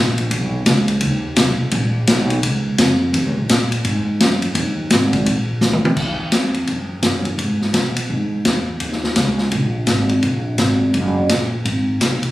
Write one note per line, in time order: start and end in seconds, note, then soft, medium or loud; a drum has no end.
0.00 0.30 A#1 medium
0.18 ride medium
0.31 0.65 B1 medium
0.31 ride medium
0.66 1.00 C#2 loud
0.66 snare medium
0.66 hi-hat pedal medium
0.66 ride medium
0.88 ride medium
1.01 1.36 D#2 medium
1.01 ride medium
1.36 1.57 B1 loud
1.36 snare medium
1.36 hi-hat pedal medium
1.36 ride medium
1.60 muted upright bass stroke soft
1.71 2.07 A#1 medium
1.71 ride medium
2.07 2.42 B1 loud
2.07 snare medium
2.07 hi-hat pedal medium
2.07 ride medium
2.30 ride medium
2.43 2.78 C#2 medium
2.43 ride medium
2.78 3.13 F2 medium
2.78 snare medium
2.78 hi-hat pedal medium
2.78 ride medium
3.13 3.26 D#2 medium
3.13 ride medium
3.26 3.37 C#2 medium
3.37 3.48 A#1 medium
3.49 3.84 A#2 loud
3.49 snare medium
3.49 hi-hat pedal medium
3.49 ride medium
3.72 ride medium
3.85 4.19 G#2 medium
3.85 ride medium
4.20 4.54 F#2 loud
4.20 snare medium
4.20 hi-hat pedal medium
4.20 ride medium
4.42 ride medium
4.55 4.89 D#2 loud
4.55 ride medium
4.90 5.25 G#1 loud
4.90 snare medium
4.90 hi-hat pedal medium
4.90 ride medium
5.13 kick medium
5.13 ride medium
5.25 5.60 A#1 medium
5.25 ride medium
5.61 5.96 D2 loud
5.61 snare medium
5.61 hi-hat pedal medium
5.73 high tom medium
5.85 high tom loud
5.97 6.31 D#2 medium
5.97 kick medium
5.97 crash medium
6.32 6.67 F2 medium
6.32 snare medium
6.32 hi-hat pedal medium
6.32 ride medium
6.54 ride soft
6.67 7.02 F#2 medium
6.67 ride medium
7.02 7.15 G2 medium
7.02 snare medium
7.02 hi-hat pedal medium
7.02 ride medium
7.15 7.26 F#2 medium
7.25 7.37 D#2 medium
7.25 ride soft
7.38 7.72 G#2 medium
7.38 ride medium
7.61 snare soft
7.73 8.08 B2 medium
7.73 snare medium
7.73 hi-hat pedal medium
7.73 ride medium
7.96 ride medium
8.10 8.44 G#2 medium
8.45 8.80 E2 medium
8.45 snare medium
8.45 hi-hat pedal medium
8.45 ride medium
8.80 9.15 D#2 medium
8.80 ride medium
8.92 snare soft
9.04 snare soft
9.16 9.51 C#2 medium
9.16 snare medium
9.16 hi-hat pedal medium
9.16 ride medium
9.38 snare soft
9.52 9.86 A#1 medium
9.52 ride medium
9.87 10.23 G#1 medium
9.87 snare medium
9.87 hi-hat pedal medium
9.87 ride medium
10.09 ride soft
10.23 10.58 A#1 medium
10.23 ride medium
10.58 10.93 G#1 medium
10.58 snare medium
10.58 hi-hat pedal medium
10.58 ride medium
10.94 11.29 F#1 medium
10.94 ride medium
11.29 11.64 A#1 medium
11.29 snare medium
11.29 hi-hat pedal medium
11.29 ride medium
11.65 11.99 G#1 medium
11.65 ride medium
12.01 12.21 B1 medium
12.01 snare medium
12.01 hi-hat pedal medium
12.01 ride medium
12.23 muted upright bass stroke soft
12.23 ride soft